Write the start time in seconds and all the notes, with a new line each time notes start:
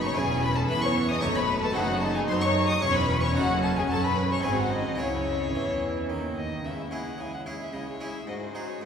Already playing: F#1 F#2 D#4 E4 G#4
0.02 C#5 C#6
0.13 C#4 E4 G#4 G#5
0.17 E1 E2 C#4 G#4 G#5
0.42 B4 B5
0.56 A4 A5
0.68 E2 E3 B3 B4 B5
0.82 C#5 C#6
1.08 D#5 D#6
1.20 F#2 A3 C#4 D#4 A4 C#6
1.24 F#1 F#2 C#5 C#6
1.35 B4 B5
1.62 A4 A5
1.73 F#1 F#2 C4 D#4 G#4 F#5
1.77 F#2 D#4 F#4 F#5
2.00 A4 A5
2.15 G#4 G#5
2.28 F#2 F#3 C5 C6
2.41 C#5 C#6
2.67 D#6
2.72 D#5
2.80 E1 E2 C#4 E4 G#4 C#5 C#6
2.85 E2
2.94 B4 B5
3.21 C#5 C#6
3.25 C#6
3.34 F#2 C#4 D#4 F#4 A4 F#5
3.38 F#1 F#2
3.63 A4 A5
3.76 G#4 G#5
3.90 F#2 F#3 A4 A5
4.03 B4 B5
4.32 C#5 C#6
4.40 G#3 C4 F#4
4.44 G#1 G#2 C4 G#4 G#5
4.58 F#4 F#5
4.72 D#4 D#5
4.95 C#3 C#4 E4 G#4 C#5
5.00 C#2 C#3 C#4 C#5
5.54 E2 E3
6.09 D#2 D#3
6.37 D#5
6.64 C#3 G#3 E4 G#4 E5
6.91 G#3 C#4 E4 G#4 F#5
7.18 C#3 G#3 E4 G#4 G#5
7.34 F#5
7.46 G#3 C#4 E4 G#4
7.62 E5
7.72 C#3 G#3 E4 G#4 D#5
7.89 C#5
8.00 G#3 C#4 E4 G#4 E5
8.26 G#2 G#3 F#4 G#4 D#5
8.40 C5
8.53 G#3 D#4 F#4 G#4
8.70 C#5
8.80 G#2 G#3 G#4 C5